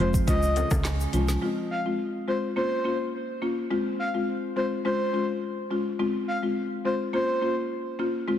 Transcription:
0.00 0.23 F1 medium
0.00 0.34 F2 medium
0.00 1.13 F3 medium
0.00 0.17 G#3 medium
0.00 0.56 G#3 medium
0.00 0.17 C4 medium
0.00 0.34 C4 medium
0.00 0.18 F4 medium
0.14 kick medium
0.14 shaker medium
0.28 0.64 C#2 loud
0.28 1.48 C#3 medium
0.28 1.07 G#3 medium
0.28 1.07 C#4 medium
0.28 1.07 F4 loud
0.28 0.69 D#5 loud
0.28 kick loud
0.28 closed hi-hat medium
0.28 shaker medium
0.43 shaker medium
0.56 1.48 G#3 medium
0.56 closed hi-hat medium
0.56 high timbale medium
0.56 shaker medium
0.71 1.07 C#2 medium
0.71 kick loud
0.71 cross-stick loud
0.71 high timbale medium
0.71 shaker medium
0.85 1.48 C#4 medium
0.85 snare loud
0.85 clap medium
0.85 closed hi-hat medium
0.85 shaker medium
1.00 shaker medium
1.13 1.38 C2 loud
1.13 1.98 F3 medium
1.13 1.32 G#3 medium
1.13 1.32 C#4 medium
1.13 1.32 F4 medium
1.13 closed hi-hat medium
1.13 shaker medium
1.28 snare medium
1.28 shaker medium
1.42 1.82 G#3 medium
1.42 1.82 C4 medium
1.42 1.82 F4 medium
1.71 1.80 F5 medium
1.86 2.03 G#3 medium
1.86 2.03 C4 medium
1.86 2.03 F4 medium
2.28 2.46 G#3 medium
2.28 2.46 C4 medium
2.28 2.46 F4 medium
2.28 2.37 C5 medium
2.56 2.83 A#3 medium
2.56 2.83 C#4 medium
2.56 2.83 F4 medium
2.56 2.97 C5 loud
2.85 3.03 A#3 medium
2.85 3.03 C#4 medium
2.85 3.03 F4 medium
3.42 3.60 A#3 medium
3.42 3.60 C#4 medium
3.42 3.60 F4 medium
3.71 4.11 G#3 medium
3.71 4.11 C4 medium
3.71 4.11 F4 medium
3.99 4.09 F5 medium
4.14 4.31 G#3 medium
4.14 4.31 C4 medium
4.14 4.31 F4 medium
4.56 4.75 G#3 medium
4.56 4.75 C4 medium
4.56 4.75 F4 medium
4.56 4.66 C5 medium
4.85 5.11 G#3 medium
4.85 5.11 C#4 medium
4.85 5.12 F4 medium
4.85 5.26 C5 loud
5.13 5.32 G#3 medium
5.13 5.32 C#4 medium
5.13 5.32 F4 medium
5.70 5.89 G#3 medium
5.70 5.89 C#4 medium
5.70 5.89 F4 medium
5.99 6.39 G#3 medium
5.99 6.39 C4 medium
5.99 6.40 F4 medium
6.28 6.37 F5 medium
6.43 6.60 G#3 medium
6.43 6.60 C4 medium
6.43 6.60 F4 medium
6.85 7.03 G#3 medium
6.85 7.03 C4 medium
6.85 7.03 F4 medium
6.85 6.95 C5 medium
7.13 7.40 A#3 medium
7.13 7.40 C#4 medium
7.13 7.40 F4 medium
7.13 7.55 C5 loud
7.42 7.60 A#3 medium
7.42 7.60 C#4 medium
7.42 7.60 F4 medium
7.99 8.17 A#3 medium
7.99 8.17 C#4 medium
7.99 8.18 F4 medium
8.28 8.39 G#3 medium
8.28 8.39 C4 medium
8.28 8.39 F4 medium

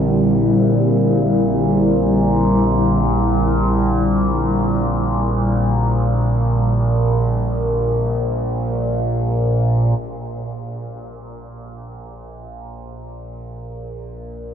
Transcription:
0.00 9.99 A#1 medium
0.00 9.98 A#2 medium
0.00 10.03 D3 medium
0.00 10.02 G3 medium
0.00 10.02 C4 medium
0.00 10.02 E4 medium
0.00 10.02 G4 medium
9.99 14.54 A#1 medium
9.99 14.54 A#2 medium

